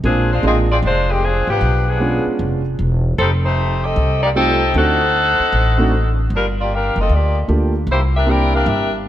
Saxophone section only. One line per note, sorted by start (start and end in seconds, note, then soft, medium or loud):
0.05 0.29 F3 medium
0.05 0.29 C4 medium
0.05 0.29 D4 medium
0.05 0.29 G#4 medium
0.33 0.44 G#3 medium
0.33 0.44 D4 medium
0.33 0.44 F4 medium
0.33 0.44 C5 medium
0.46 0.57 C4 medium
0.46 0.57 F4 medium
0.46 0.57 G#4 medium
0.46 0.57 D#5 medium
0.72 0.77 C4 medium
0.72 0.77 F4 medium
0.72 0.77 G#4 medium
0.72 0.77 D5 medium
0.85 1.08 G#3 medium
0.85 1.08 D4 medium
0.85 1.08 F4 medium
0.85 1.08 C5 medium
1.11 1.23 D#3 medium
1.11 1.23 G#3 medium
1.11 1.24 C4 medium
1.11 1.23 G4 medium
1.25 1.49 F3 medium
1.25 1.49 C4 medium
1.25 1.49 D4 medium
1.25 1.49 G#4 medium
1.50 1.86 F3 medium
1.50 1.86 B3 medium
1.50 1.86 D4 medium
1.50 1.86 G4 medium
1.88 2.27 F3 medium
1.88 2.27 B3 medium
1.88 2.27 D4 medium
1.88 2.27 G#4 medium
3.18 3.30 G3 medium
3.18 3.30 C4 medium
3.18 3.30 D#4 medium
3.18 3.30 A4 medium
3.45 3.81 A3 medium
3.45 3.81 D#4 medium
3.45 3.81 G4 medium
3.45 3.81 C5 medium
3.84 4.23 C4 medium
3.84 4.22 G4 medium
3.84 4.23 A4 medium
3.84 4.23 D#5 medium
4.23 4.29 A#3 medium
4.23 4.29 D#4 medium
4.23 4.29 G4 medium
4.23 4.29 D5 medium
4.37 4.73 D#4 medium
4.37 4.73 A4 medium
4.37 4.73 C5 medium
4.37 4.73 G5 medium
4.77 6.19 D#4 loud
4.77 6.19 A4 medium
4.77 6.19 C5 loud
4.77 6.19 F#5 loud
6.35 6.46 G3 medium
6.35 6.46 D4 medium
6.35 6.46 F4 medium
6.35 6.46 A#4 medium
6.60 6.71 A#3 medium
6.60 6.72 F4 medium
6.60 6.72 G4 medium
6.60 6.71 D5 medium
6.75 6.98 D4 medium
6.75 6.98 G4 medium
6.75 6.99 A#4 medium
6.75 6.98 F5 medium
7.00 7.11 C4 medium
7.00 7.11 F4 medium
7.00 7.11 A4 medium
7.00 7.11 D#5 medium
7.14 7.38 A#3 medium
7.14 7.38 F4 medium
7.14 7.38 G4 medium
7.14 7.37 D5 medium
7.91 8.02 A#3 medium
7.91 8.02 E4 medium
7.91 8.02 G4 medium
7.91 8.02 C5 medium
8.16 8.27 D4 medium
8.16 8.28 G4 medium
8.16 8.27 A#4 medium
8.16 8.27 E5 medium
8.30 8.54 E4 medium
8.30 8.54 A#4 medium
8.30 8.54 D5 medium
8.30 8.54 G5 medium
8.55 8.66 D4 medium
8.55 8.66 G4 medium
8.55 8.66 A#4 medium
8.55 8.66 F5 medium
8.67 8.92 D4 medium
8.67 8.92 G4 medium
8.67 8.92 A#4 medium
8.67 8.92 E5 medium